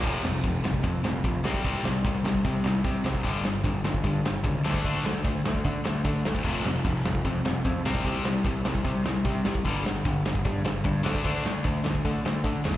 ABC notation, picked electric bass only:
X:1
M:4/4
L:1/8
Q:1/4=150
K:F
V:1 name="Picked electric bass" clef=bass
F,,, F,,, F,,, F,,, F,, F,,, B,,, C,, | C,, C,, C,, C,, C, C,, C, C,, | G,,, G,,, G,,, G,,, G,, G,,, _D,, =D,, | D,, D,, D,, D,, D, D,, D, D,, |
F,,, F,,, F,,, F,,, F,, F,,, F,, C,, | C,, C,, C,, C,, C, C,, C, C,, | G,,, G,,, G,,, G,,, G,, G,,, G,, D,, | D,, D,, D,, D,, D, D,, D, E,, |]